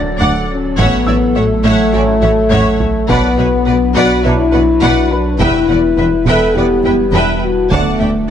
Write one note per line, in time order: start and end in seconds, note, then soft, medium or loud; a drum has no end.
0.00 0.80 D1 medium
0.00 3.09 F#3 medium
0.00 0.33 D4 medium
0.00 0.79 F#4 medium
0.00 3.10 A4 medium
0.00 0.79 D5 medium
0.00 1.62 A6 soft
0.19 0.28 D2 medium
0.19 0.29 D2 medium
0.19 0.38 D3 medium
0.19 0.47 D5 medium
0.19 0.47 F#5 medium
0.50 0.78 C#4 medium
0.77 0.86 A1 medium
0.77 3.11 A1 medium
0.77 0.86 A2 medium
0.77 0.99 F#3 medium
0.77 0.96 A3 medium
0.77 1.37 B3 medium
0.77 0.99 C#4 medium
0.77 3.10 E4 medium
0.77 1.05 C#5 medium
0.77 3.10 C#5 medium
0.77 1.05 E5 medium
0.77 1.05 F#5 medium
0.77 taiko medium
1.06 1.15 A1 soft
1.06 1.15 A2 medium
1.06 1.24 E4 medium
1.06 1.14 C#5 soft
1.06 1.15 D5 soft
1.06 1.15 E5 soft
1.06 2.76 E6 soft
1.35 1.44 A1 soft
1.35 1.44 A2 soft
1.35 3.10 A3 medium
1.35 1.53 F#4 medium
1.35 1.43 C#5 soft
1.35 1.43 E5 medium
1.35 1.44 F#5 medium
1.63 1.72 A1 medium
1.63 1.73 A2 medium
1.63 1.82 A3 medium
1.63 1.91 C#5 medium
1.63 1.91 E5 medium
1.63 1.92 F#5 medium
1.93 2.01 A1 medium
1.93 2.02 A2 soft
1.93 2.15 F#3 medium
1.93 2.15 C#4 medium
1.93 2.11 F#4 medium
1.93 2.01 C#5 soft
1.93 2.01 D5 soft
1.93 2.02 E5 soft
2.22 2.31 A1 medium
2.22 2.31 A2 medium
2.22 2.39 F#4 medium
2.22 2.30 C#5 medium
2.22 2.30 E5 medium
2.22 2.30 F#5 medium
2.22 taiko high medium
2.51 2.60 A1 medium
2.51 2.59 A2 medium
2.51 2.69 A3 medium
2.51 2.79 C#5 medium
2.51 2.78 E5 medium
2.51 2.78 F#5 medium
2.51 taiko low-mid medium
2.81 taiko low medium
3.08 5.41 B1 medium
3.08 3.18 B1 medium
3.08 3.17 B2 medium
3.08 3.29 F#3 medium
3.08 5.36 F#3 medium
3.08 3.96 B3 medium
3.08 3.26 B3 medium
3.08 3.29 D4 medium
3.08 5.40 D4 medium
3.08 5.40 F#4 medium
3.08 3.36 B4 medium
3.08 7.71 B4 medium
3.08 3.37 D5 medium
3.08 3.36 F#5 medium
3.08 4.78 B5 soft
3.08 taiko medium
3.37 3.46 B1 medium
3.37 3.46 B2 medium
3.37 3.55 F#4 medium
3.37 3.46 B4 medium
3.37 3.47 C#5 soft
3.37 3.45 E5 soft
3.65 3.75 B1 soft
3.65 3.75 B2 medium
3.65 3.73 B4 medium
3.65 3.85 B4 medium
3.65 3.76 D5 medium
3.65 3.74 F#5 soft
3.94 4.04 B1 medium
3.94 4.04 B2 medium
3.94 4.13 B3 medium
3.94 4.23 F#4 medium
3.94 4.22 B4 medium
3.94 4.23 D5 medium
3.94 4.22 F#5 medium
4.22 4.33 B1 medium
4.22 4.33 B2 medium
4.22 4.45 F#3 medium
4.22 4.45 D4 medium
4.22 5.11 E4 medium
4.22 4.32 B4 soft
4.22 4.42 B4 medium
4.22 4.32 C#5 medium
4.22 4.30 E5 soft
4.53 4.62 B1 medium
4.53 4.62 B2 soft
4.53 4.61 B4 medium
4.53 4.71 B4 medium
4.53 4.62 D5 medium
4.53 4.61 F#5 medium
4.81 4.90 B1 medium
4.81 4.90 B2 medium
4.81 5.00 B3 medium
4.81 5.09 B4 medium
4.81 5.09 D5 medium
4.81 5.09 F#5 medium
5.10 5.40 D4 medium
5.10 6.81 B4 soft
5.10 6.81 B5 soft
5.38 5.48 E1 medium
5.38 7.73 E1 medium
5.38 5.48 E2 medium
5.38 5.58 E3 medium
5.38 5.60 G3 medium
5.38 7.71 G3 medium
5.38 5.60 B3 medium
5.38 7.71 B3 medium
5.38 6.24 E4 medium
5.38 7.71 E4 medium
5.38 5.67 B4 medium
5.38 5.67 E5 medium
5.38 5.66 G5 medium
5.38 taiko medium
5.68 5.77 E1 soft
5.68 5.77 E2 medium
5.68 5.87 B3 medium
5.68 5.78 B4 soft
5.68 5.79 D5 soft
5.68 5.76 F#5 soft
5.97 6.05 E1 soft
5.97 6.07 E2 medium
5.97 6.16 E4 medium
5.97 6.06 B4 medium
5.97 6.06 E5 medium
5.97 6.06 G5 soft
6.26 6.35 E1 medium
6.26 6.35 E2 medium
6.26 6.44 E3 medium
6.26 6.55 A4 medium
6.26 6.54 B4 medium
6.26 6.54 E5 medium
6.26 6.54 G5 medium
6.55 6.64 E1 soft
6.55 6.63 E2 soft
6.55 6.76 G3 medium
6.55 6.77 B3 medium
6.55 6.73 E4 medium
6.55 7.24 G4 medium
6.55 6.64 B4 soft
6.55 6.65 D5 medium
6.55 6.64 F#5 medium
6.84 6.93 E1 medium
6.84 6.93 E2 soft
6.84 7.02 E4 medium
6.84 6.93 B4 medium
6.84 6.94 E5 soft
6.84 6.93 G5 medium
7.13 7.21 E1 medium
7.13 7.21 E2 medium
7.13 7.30 E3 medium
7.13 7.40 B4 medium
7.13 7.40 E5 medium
7.13 7.40 G5 medium
7.13 8.30 A5 soft
7.41 7.70 F#4 medium
7.69 8.30 D1 medium
7.69 7.80 D2 medium
7.69 7.88 D3 medium
7.69 7.90 F#3 medium
7.69 7.90 A3 medium
7.69 8.30 A3 medium
7.69 8.30 D4 medium
7.69 8.30 F#4 medium
7.69 8.30 A4 medium
7.69 7.98 D5 medium
7.69 7.98 F#5 medium
7.69 7.98 A5 medium
7.69 taiko medium
7.69 riser medium
8.00 8.08 D2 soft
8.00 8.09 D2 soft
8.00 8.17 A3 medium
8.00 8.09 D5 soft
8.00 8.08 E5 soft
8.00 8.08 G5 soft